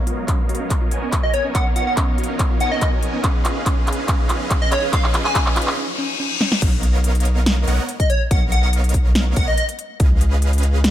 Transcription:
Already playing: ambient pad F3 B3 D#4 A#4 C#5, supersaw synth B3 A#4 C#5 D#5 F5, riser
0.07 synth arpeggio sound F4, closed hi-hat
0.28 synth arpeggio sound C#4, kick, clap, closed hi-hat
0.49 synth arpeggio sound F#4, closed hi-hat
0.55 closed hi-hat
0.60 synth arpeggio sound C#4
0.70 kick, clap, closed hi-hat
0.81 synth arpeggio sound F4
0.91 supersaw synth B3 A#4 C#5 D#5 G#5, closed hi-hat
1.02 synth arpeggio sound C#4
1.12 synth arpeggio sound A#4, kick, clap, closed hi-hat
1.23 synth arpeggio sound F#4, digital synth lead D#5
1.34 digital synth lead C#5, closed hi-hat
1.45 synth arpeggio sound C#4
1.55 supersaw synth B3 A#4 C#5 D#5 F5, synth arpeggio sound C#4, digital synth lead F#5, kick, clap, closed hi-hat
1.76 synth arpeggio sound F4, digital synth lead F#5, closed hi-hat
1.87 digital synth lead F#5
1.97 synth arpeggio sound C#4, kick, clap, closed hi-hat
2.18 synth arpeggio sound F#4, closed hi-hat
2.24 closed hi-hat
2.29 synth arpeggio sound C#4
2.39 kick, clap, closed hi-hat
2.50 synth arpeggio sound F4
2.60 supersaw synth B3 A#4 C#5 D#5 G#5, digital synth lead F#5, closed hi-hat
2.71 synth arpeggio sound C#4, digital synth lead D#5
2.81 synth arpeggio sound A#4, digital synth lead D#5, kick, clap, closed hi-hat
2.93 synth arpeggio sound F#4
3.03 closed hi-hat
3.14 synth arpeggio sound C#4
3.24 ambient pad F3 B4, synth arpeggio sound C#4, supersaw synth C#4 G#4 B4 D#5 F5, kick, clap, closed hi-hat
3.45 synth arpeggio sound F4, clap, closed hi-hat
3.66 synth arpeggio sound C#4, kick, clap, closed hi-hat
3.87 synth arpeggio sound G#4, clap, closed hi-hat
3.93 closed hi-hat
3.98 synth arpeggio sound C#4
4.08 synth arpeggio sound C#4, supersaw synth C#4 G#4 B4 D#5 F5, kick, clap, closed hi-hat
4.29 synth arpeggio sound F4, clap, closed hi-hat
4.50 synth arpeggio sound C#4, kick, clap, closed hi-hat
4.62 digital synth lead D#5
4.72 synth arpeggio sound G#4, digital synth lead C#5, clap, closed hi-hat
4.83 synth arpeggio sound C#4
4.93 synth arpeggio sound C#4, supersaw synth G#4, digital synth lead F5, kick, clap, closed hi-hat
5.04 clap
5.14 synth arpeggio sound F4, clap, closed hi-hat
5.25 digital synth lead G#5, clap
5.35 synth arpeggio sound C#4, supersaw synth G#4, digital synth lead G#5, kick, clap, closed hi-hat
5.46 clap
5.56 synth arpeggio sound F4, clap, closed hi-hat
5.62 closed hi-hat
5.67 clap
5.77 synth arpeggio sound C#4, reverse cymbal
5.99 synth arpeggio sound C#4
6.20 synth arpeggio sound C#4
6.41 synth arpeggio sound C#4, snare
6.52 snare
6.62 sub bass B1, supersaw synth B3 A#4 C#5 D#5 F5, kick, closed hi-hat, crash
6.83 closed hi-hat
7.04 closed hi-hat
7.15 closed hi-hat
7.20 closed hi-hat
7.25 closed hi-hat
7.46 snare, closed hi-hat
7.67 sub bass B1, supersaw synth B3 A#4 C#5 D#5 F#5, closed hi-hat
7.89 closed hi-hat
8.00 digital synth lead D#5, kick, closed hi-hat
8.10 digital synth lead C#5, closed hi-hat
8.31 sub bass B1, supersaw synth B3 A#4 C#5 D#5 F5, digital synth lead F#5, kick, closed hi-hat
8.52 digital synth lead F#5, closed hi-hat
8.63 digital synth lead F#5
8.73 closed hi-hat
8.84 closed hi-hat
8.89 closed hi-hat
8.94 kick, closed hi-hat
9.15 snare, closed hi-hat
9.36 sub bass B1, supersaw synth B3 A#4 C#5 D#5 F#5, digital synth lead F#5, kick, closed hi-hat
9.48 digital synth lead D#5
9.58 digital synth lead D#5, closed hi-hat
9.69 closed hi-hat
9.79 closed hi-hat
10.00 sub bass C#2, supersaw synth C#4 G#4 B4 D#5 F5, kick, closed hi-hat
10.21 closed hi-hat
10.42 closed hi-hat
10.53 closed hi-hat
10.58 closed hi-hat
10.63 closed hi-hat
10.84 snare, closed hi-hat

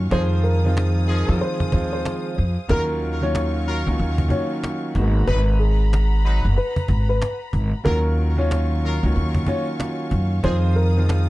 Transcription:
Already playing: string section F5
0.11 upright bass F2, grand piano D#3 F3 G#3 C4 F4, horn section F3 D#4 G#4, string section G#4 D#6, upright piano C5, cajon bass
0.44 upright piano A#4, cajon slap
0.63 grand piano D#3 F3 G#3 C4 F4, cajon slap
0.77 cajon slap
1.07 horn section F3 D#4 G#4, cajon slap
1.26 upright bass F2, grand piano D#3 F3 G#3 C4 F4
1.41 upright piano C5, cajon slap
1.60 cajon bass
1.72 upright bass D#2, grand piano D#3 F3 G#3 C4 F4, cajon bass
1.93 upright piano C5
2.05 cajon slap
2.37 upright bass F2, cajon slap
2.69 upright bass D#2, grand piano D#3 F#3 A#3 C#4 F4, horn section F#3 F4 A#4, string section F#3 F5 C#6, upright piano A#4, cajon bass
3.02 cajon slap
3.21 grand piano D#3 F#3 A#3 C#4 F4, upright piano C#5, cajon slap
3.35 cajon slap
3.66 horn section F#3 F4 A#4, cajon slap
3.86 upright bass C#2, grand piano D#3 F#3 A#3 C#4 F4
3.99 upright bass D#2, cajon slap
4.18 cajon bass
4.28 grand piano D#3 F#3 A#3 C#4 F4, upright piano C#5, cajon bass
4.64 cajon slap
4.95 upright bass G#1, grand piano D#3 G#3 A#3 B3 F#4, string section F#5 A#5 B5, cajon bass
5.27 upright bass G#1, horn section F#3 D#4 B4, upright piano B4, cajon bass
5.59 upright piano G#4, cajon slap
5.79 cajon slap
5.93 cajon slap
6.24 horn section F#3 D#4 B4, cajon slap
6.45 upright bass F#1
6.57 upright piano B4, cajon slap
6.76 cajon bass
6.88 upright bass G#1, cajon bass
7.09 upright piano B4
7.22 cajon slap
7.53 upright bass G#1, cajon bass
7.84 upright bass D#2, grand piano D#3 F#3 A#3 C#4 F4, horn section F#3 F4 A#4, string section F#3 F5 C#6, upright piano A#4, cajon bass
8.18 cajon slap
8.37 grand piano D#3 F#3 A#3 C#4 F4, upright piano C#5, cajon slap
8.51 cajon slap
8.82 horn section F#3 F4 A#4, cajon slap
9.03 upright bass C#2, grand piano D#3 F#3 A#3 C#4 F4
9.16 upright bass D#2, cajon slap
9.35 cajon bass
9.46 grand piano D#3 F#3 A#3 C#4 F4, upright piano C#5, cajon bass
9.80 cajon slap
10.11 upright bass F#2, cajon bass
10.43 upright bass F2, grand piano D#3 F3 G#3 C4 F4, horn section F3 D#4 G#4, string section G#4 D#6, upright piano C5, cajon bass
10.76 upright piano A#4, cajon slap
10.95 grand piano D#3 F3 G#3 C4 F4, cajon slap
11.09 cajon slap

